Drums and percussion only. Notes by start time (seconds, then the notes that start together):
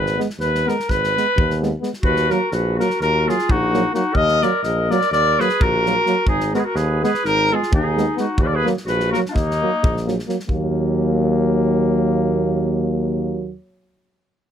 0.06 snare
0.20 snare
0.30 snare
0.40 snare
0.55 snare
0.69 snare
0.80 snare
0.89 kick, snare
1.04 snare
1.17 snare
1.38 kick
1.50 snare
1.63 snare
1.83 snare
1.93 snare
2.03 kick
2.16 snare
2.30 snare
2.52 snare
2.80 snare
2.90 snare
3.01 snare
3.29 snare
3.39 snare
3.49 kick
3.74 snare
3.95 snare
4.15 kick
4.28 snare
4.42 snare
4.64 snare
4.91 snare
5.01 snare
5.13 snare
5.40 snare
5.49 snare
5.61 kick
5.86 snare
6.06 snare
6.27 kick
6.40 snare
6.54 snare
6.76 snare
7.04 snare
7.14 snare
7.25 snare
7.63 snare
7.73 kick
7.98 snare
8.17 snare
8.38 kick
8.67 snare
8.77 snare
8.87 snare
9.00 snare
9.14 snare
9.26 snare
9.36 kick, snare
9.51 snare
9.84 kick
9.97 snare
10.08 snare
10.19 snare
10.29 snare
10.40 snare
10.49 kick